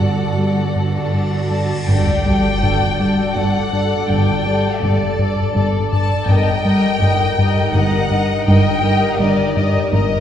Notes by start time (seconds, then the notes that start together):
Already playing: G1 G2 F#4 A4 D5 F#5 A5, cymbal swell
0.01 G2
0.38 G3
0.76 G2
1.14 G2
1.51 G2 A5
1.88 G1 G2 A4 D5 G5 A5, sub drop
2.26 G3 A4 D5
2.62 G1 G2 A4 D5
3.00 G2 A4 D5
3.36 G1 G2 A4 D5 F#5
3.73 G2 A4 D5
4.09 G1 G2 A4 D5 G5
4.46 G3 A4 D5
4.81 G1 G2 A4 D5
5.19 G2 A4 D5
5.55 G1 G2 A4 D5
5.91 G2 A4 D5 A5
6.28 G1 G2 D#4 G4 A#4 D#5 G5
6.64 G3 A#4 D#5
7.01 G1 G2 A#4 D#5
7.37 G2 A#4 D#5
7.73 G1 G2 A#4 D#5 F#5
8.10 G2 A#4 D#5
8.45 G1 G2 A#4 D#5 G5
8.82 G3 A#4 D#5
9.18 G1 G2 A#4 D5 D#5
9.56 G2 A#4 D#5
9.92 G1 G2 A#4 D#5